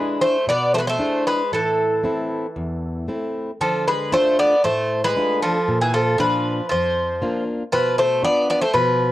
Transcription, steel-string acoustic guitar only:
0, 0, Header, 1, 2, 480
1, 0, Start_track
1, 0, Tempo, 522648
1, 1388, Time_signature, 4, 2, 24, 8
1, 4258, Tempo, 511945
1, 8461, End_track
2, 0, Start_track
2, 0, Title_t, "Steel-string acoustic guitar"
2, 0, Program_c, 0, 25
2, 0, Note_on_c, 0, 62, 52
2, 0, Note_on_c, 0, 64, 49
2, 0, Note_on_c, 0, 68, 58
2, 326, Note_off_c, 0, 62, 0
2, 330, Note_off_c, 0, 64, 0
2, 333, Note_off_c, 0, 68, 0
2, 431, Note_on_c, 0, 47, 65
2, 895, Note_off_c, 0, 47, 0
2, 912, Note_on_c, 0, 62, 54
2, 916, Note_on_c, 0, 64, 49
2, 917, Note_on_c, 0, 68, 62
2, 1295, Note_off_c, 0, 64, 0
2, 1297, Note_off_c, 0, 62, 0
2, 1298, Note_off_c, 0, 68, 0
2, 1396, Note_on_c, 0, 45, 66
2, 1859, Note_off_c, 0, 45, 0
2, 1869, Note_on_c, 0, 57, 54
2, 1873, Note_on_c, 0, 60, 51
2, 1881, Note_on_c, 0, 64, 60
2, 2253, Note_off_c, 0, 57, 0
2, 2257, Note_off_c, 0, 60, 0
2, 2259, Note_off_c, 0, 64, 0
2, 2352, Note_on_c, 0, 40, 70
2, 2815, Note_off_c, 0, 40, 0
2, 2831, Note_on_c, 0, 57, 50
2, 2836, Note_on_c, 0, 60, 45
2, 2840, Note_on_c, 0, 64, 62
2, 3212, Note_off_c, 0, 57, 0
2, 3215, Note_off_c, 0, 60, 0
2, 3218, Note_off_c, 0, 64, 0
2, 3312, Note_on_c, 0, 50, 71
2, 3772, Note_off_c, 0, 50, 0
2, 3784, Note_on_c, 0, 57, 50
2, 3789, Note_on_c, 0, 62, 52
2, 3796, Note_on_c, 0, 65, 60
2, 4164, Note_off_c, 0, 57, 0
2, 4168, Note_off_c, 0, 62, 0
2, 4169, Note_off_c, 0, 65, 0
2, 4266, Note_on_c, 0, 45, 70
2, 4732, Note_off_c, 0, 45, 0
2, 4749, Note_on_c, 0, 57, 53
2, 4753, Note_on_c, 0, 62, 49
2, 4760, Note_on_c, 0, 65, 62
2, 5134, Note_off_c, 0, 57, 0
2, 5134, Note_off_c, 0, 62, 0
2, 5139, Note_off_c, 0, 65, 0
2, 5237, Note_on_c, 0, 46, 71
2, 5699, Note_off_c, 0, 46, 0
2, 5714, Note_on_c, 0, 46, 53
2, 5719, Note_on_c, 0, 62, 50
2, 5727, Note_on_c, 0, 65, 61
2, 6097, Note_off_c, 0, 46, 0
2, 6100, Note_off_c, 0, 62, 0
2, 6104, Note_off_c, 0, 65, 0
2, 6204, Note_on_c, 0, 41, 68
2, 6662, Note_off_c, 0, 41, 0
2, 6678, Note_on_c, 0, 58, 56
2, 6686, Note_on_c, 0, 62, 50
2, 6686, Note_on_c, 0, 65, 61
2, 7059, Note_off_c, 0, 58, 0
2, 7060, Note_off_c, 0, 62, 0
2, 7062, Note_off_c, 0, 65, 0
2, 7159, Note_on_c, 0, 47, 69
2, 7617, Note_off_c, 0, 47, 0
2, 7623, Note_on_c, 0, 59, 50
2, 7626, Note_on_c, 0, 62, 47
2, 7633, Note_on_c, 0, 65, 63
2, 8005, Note_off_c, 0, 59, 0
2, 8008, Note_off_c, 0, 62, 0
2, 8009, Note_off_c, 0, 65, 0
2, 8106, Note_on_c, 0, 47, 73
2, 8461, Note_off_c, 0, 47, 0
2, 8461, End_track
0, 0, End_of_file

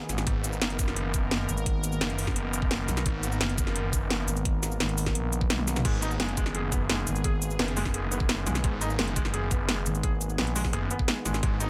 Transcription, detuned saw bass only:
0, 0, Header, 1, 2, 480
1, 0, Start_track
1, 0, Key_signature, 5, "minor"
1, 0, Tempo, 348837
1, 367, Time_signature, 4, 2, 24, 8
1, 16098, End_track
2, 0, Start_track
2, 0, Title_t, "Detuned saw bass"
2, 0, Program_c, 0, 39
2, 368, Note_on_c, 0, 32, 99
2, 828, Note_off_c, 0, 32, 0
2, 847, Note_on_c, 0, 30, 97
2, 2028, Note_off_c, 0, 30, 0
2, 2767, Note_on_c, 0, 30, 98
2, 3948, Note_off_c, 0, 30, 0
2, 4207, Note_on_c, 0, 32, 100
2, 4668, Note_off_c, 0, 32, 0
2, 4688, Note_on_c, 0, 30, 98
2, 5869, Note_off_c, 0, 30, 0
2, 8048, Note_on_c, 0, 32, 98
2, 8509, Note_off_c, 0, 32, 0
2, 8528, Note_on_c, 0, 30, 97
2, 9709, Note_off_c, 0, 30, 0
2, 10448, Note_on_c, 0, 30, 97
2, 11628, Note_off_c, 0, 30, 0
2, 11888, Note_on_c, 0, 32, 100
2, 12349, Note_off_c, 0, 32, 0
2, 12367, Note_on_c, 0, 30, 96
2, 13548, Note_off_c, 0, 30, 0
2, 14767, Note_on_c, 0, 30, 99
2, 14988, Note_off_c, 0, 30, 0
2, 15727, Note_on_c, 0, 32, 102
2, 16098, Note_off_c, 0, 32, 0
2, 16098, End_track
0, 0, End_of_file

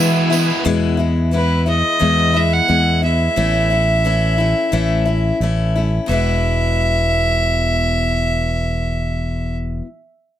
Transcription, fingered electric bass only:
0, 0, Header, 1, 2, 480
1, 0, Start_track
1, 0, Key_signature, 4, "major"
1, 0, Tempo, 677966
1, 466, Time_signature, 4, 2, 24, 8
1, 7360, End_track
2, 0, Start_track
2, 0, Title_t, "Fingered electric bass"
2, 0, Program_c, 0, 33
2, 0, Note_on_c, 0, 52, 86
2, 359, Note_off_c, 0, 52, 0
2, 466, Note_on_c, 0, 40, 92
2, 1286, Note_off_c, 0, 40, 0
2, 1428, Note_on_c, 0, 40, 89
2, 1837, Note_off_c, 0, 40, 0
2, 1909, Note_on_c, 0, 40, 94
2, 2318, Note_off_c, 0, 40, 0
2, 2388, Note_on_c, 0, 33, 94
2, 3208, Note_off_c, 0, 33, 0
2, 3349, Note_on_c, 0, 33, 91
2, 3758, Note_off_c, 0, 33, 0
2, 3826, Note_on_c, 0, 33, 82
2, 4236, Note_off_c, 0, 33, 0
2, 4311, Note_on_c, 0, 28, 82
2, 6939, Note_off_c, 0, 28, 0
2, 7360, End_track
0, 0, End_of_file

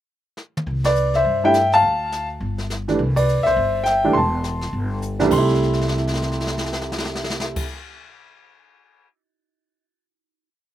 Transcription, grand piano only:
0, 0, Header, 1, 2, 480
1, 0, Start_track
1, 0, Key_signature, 0, "major"
1, 0, Tempo, 290135
1, 1103, Time_signature, 4, 2, 24, 8
1, 17777, End_track
2, 0, Start_track
2, 0, Title_t, "Grand piano"
2, 0, Program_c, 0, 0
2, 1413, Note_on_c, 0, 74, 92
2, 1438, Note_on_c, 0, 71, 58
2, 1866, Note_off_c, 0, 71, 0
2, 1900, Note_off_c, 0, 74, 0
2, 1909, Note_on_c, 0, 76, 84
2, 1926, Note_on_c, 0, 72, 62
2, 2350, Note_off_c, 0, 72, 0
2, 2373, Note_on_c, 0, 55, 57
2, 2374, Note_off_c, 0, 76, 0
2, 2376, Note_on_c, 0, 57, 53
2, 2383, Note_on_c, 0, 62, 53
2, 2387, Note_on_c, 0, 64, 67
2, 2397, Note_on_c, 0, 79, 97
2, 2399, Note_on_c, 0, 76, 78
2, 2534, Note_off_c, 0, 55, 0
2, 2535, Note_off_c, 0, 57, 0
2, 2539, Note_off_c, 0, 62, 0
2, 2541, Note_off_c, 0, 64, 0
2, 2826, Note_off_c, 0, 76, 0
2, 2871, Note_off_c, 0, 79, 0
2, 2873, Note_on_c, 0, 81, 119
2, 2889, Note_on_c, 0, 77, 75
2, 3749, Note_off_c, 0, 81, 0
2, 3757, Note_off_c, 0, 77, 0
2, 4764, Note_on_c, 0, 55, 51
2, 4766, Note_on_c, 0, 52, 60
2, 4768, Note_on_c, 0, 57, 55
2, 4781, Note_on_c, 0, 62, 65
2, 4928, Note_off_c, 0, 55, 0
2, 4929, Note_off_c, 0, 52, 0
2, 4930, Note_off_c, 0, 57, 0
2, 4937, Note_off_c, 0, 62, 0
2, 5233, Note_on_c, 0, 74, 80
2, 5268, Note_on_c, 0, 71, 60
2, 5678, Note_on_c, 0, 76, 98
2, 5698, Note_off_c, 0, 71, 0
2, 5727, Note_off_c, 0, 74, 0
2, 5733, Note_on_c, 0, 72, 67
2, 6313, Note_off_c, 0, 76, 0
2, 6343, Note_off_c, 0, 72, 0
2, 6346, Note_on_c, 0, 79, 96
2, 6405, Note_on_c, 0, 76, 70
2, 6689, Note_on_c, 0, 52, 62
2, 6691, Note_on_c, 0, 57, 58
2, 6694, Note_on_c, 0, 55, 57
2, 6696, Note_on_c, 0, 62, 72
2, 6807, Note_off_c, 0, 79, 0
2, 6838, Note_off_c, 0, 76, 0
2, 6838, Note_on_c, 0, 84, 85
2, 6848, Note_off_c, 0, 52, 0
2, 6849, Note_off_c, 0, 57, 0
2, 6851, Note_off_c, 0, 55, 0
2, 6851, Note_off_c, 0, 62, 0
2, 6907, Note_on_c, 0, 81, 66
2, 8218, Note_off_c, 0, 84, 0
2, 8253, Note_off_c, 0, 81, 0
2, 8592, Note_on_c, 0, 36, 72
2, 8595, Note_on_c, 0, 52, 61
2, 8596, Note_on_c, 0, 57, 58
2, 8597, Note_on_c, 0, 55, 55
2, 8604, Note_on_c, 0, 62, 79
2, 8705, Note_on_c, 0, 48, 63
2, 8742, Note_off_c, 0, 55, 0
2, 8758, Note_off_c, 0, 36, 0
2, 8759, Note_off_c, 0, 52, 0
2, 8760, Note_off_c, 0, 57, 0
2, 8763, Note_off_c, 0, 62, 0
2, 8766, Note_on_c, 0, 55, 59
2, 8809, Note_on_c, 0, 84, 74
2, 8833, Note_on_c, 0, 57, 60
2, 8899, Note_on_c, 0, 64, 68
2, 12546, Note_off_c, 0, 84, 0
2, 12560, Note_off_c, 0, 48, 0
2, 12591, Note_off_c, 0, 55, 0
2, 12624, Note_off_c, 0, 57, 0
2, 12657, Note_off_c, 0, 64, 0
2, 17777, End_track
0, 0, End_of_file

